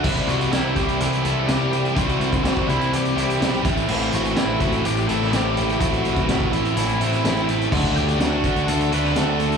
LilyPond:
<<
  \new Staff \with { instrumentName = "Lead electric guitar" } { \time 4/4 \key c \lydian \tempo 4 = 125 r8 <fis' fis''>8 <e' e''>8 <g' g''>4 <a' a''>8 <g' g''>4 | <fis' fis''>4 <fis' fis''>8 <e' e''>8 <g' g''>4. r8 | r8 <fis' fis''>8 <e' e''>8 <fis' fis''>8 <g' g''>8 <a' a''>8 <g' g''>4 | <fis' fis''>4. <e' e''>8 <e' e''>4. r8 |
r8 <g' g''>8 <fis' fis''>4 <a' a''>8 <b' b''>8 <a' a''>4 | }
  \new Staff \with { instrumentName = "Overdriven electric guitar" } { \time 4/4 \key c \lydian <c g c' e'>4 <c g c' e'>8 <g c' e'>4 <g c' e'>8 <c g c' e'>4 | <c g c' e'>4 <c g c' e'>8 <g c' e'>4 <g c' e'>8 <c g e'>8 <a, e a c' e'>8 | <a, e a c' e'>4 <a, e a c' e'>8 <a c' e'>4 <a c' e'>8 <e a c' e'>4 | <a, e a c' e'>4 <a, e a c' e'>8 <a c' e'>4 <a c' e'>8 <e a c' e'>4 |
<d a d' fis'>4 <d a d' fis'>8 <a d' fis'>4 <a d' fis'>8 <d a d' fis'>4 | }
  \new Staff \with { instrumentName = "Distorted electric guitar" } { \time 4/4 \key c \lydian <c e g c' e'>4 <c e g c' e'>4 <e g c' e'>8 <g c' e'>8 <e g c' e'>8 <g c' e'>8 | <c e g c' e'>4 <c e g c' e'>4 <e g c' e'>8 <g c' e'>8 <e g c' e'>8 <a, e a c' e'>8 | <a, e a c' e'>4 <a, e a c' e'>4 <e a c' e'>8 <a c' e'>8 <e a c' e'>8 <a c' e'>8 | <a, e a c' e'>4 <a, e a c' e'>4 <e a c' e'>8 <a c' e'>8 <e a c' e'>8 <a c' e'>8 |
<d a d' fis'>4 <d a d' fis'>4 <d a d' fis'>8 <a d' fis'>8 <d a d' fis'>8 <a d' fis'>8 | }
  \new Staff \with { instrumentName = "Distorted electric guitar" } { \clef bass \time 4/4 \key c \lydian <c g c'>1 | <c g c'>2.~ <c g c'>8 <a, e a>8~ | <a, e a>2.~ <a, e a>8 <a, e a>8~ | <a, e a>2.~ <a, e a>8 r8 |
<d a d'>1 | }
  \new Staff \with { instrumentName = "Picked electric bass" } { \clef bass \time 4/4 \key c \lydian c,8 c,8 c,8 c,8 c,8 c,8 c,4 | c,8 c,8 c,8 c,8 c,8 c,8 b,,8 a,,8 | a,,8 a,,8 a,,8 a,,8 a,,8 a,,8 a,,4 | a,,8 a,,8 a,,8 a,,8 a,,8 a,,8 a,,4 |
d,8 d,8 d,8 d,8 d,8 d,8 d,4 | }
  \new DrumStaff \with { instrumentName = "Drums" } \drummode { \time 4/4 <cymc bd>16 bd16 hh16 hh16 <hh sn>8 <hh bd>16 hh16 hh16 hh16 hh8 <hh sn>8 hh16 hh16 | <hh bd>16 hh16 hh16 <hh bd>16 <hh sn>16 bd16 hh16 hh16 hh16 hh16 hh16 hh16 <hh sn>16 hh16 <hh bd>16 hh16 | cymc8 hh16 hh16 <hh sn>8 <hh bd>16 hh16 hh16 hh16 hh16 sn16 <hh sn>8 hh16 hh16 | <hh bd>16 hh16 hh16 <hh bd>16 <hh sn>16 bd16 hh16 hh16 hh16 hh16 hh16 hh16 <hh sn>16 hh16 hh16 hh16 |
<cymc bd>16 bd16 hh16 hh16 <hh sn>8 <hh bd>16 hh16 hh16 hh16 hh16 sn16 <hh sn>8 hh16 hh16 | }
>>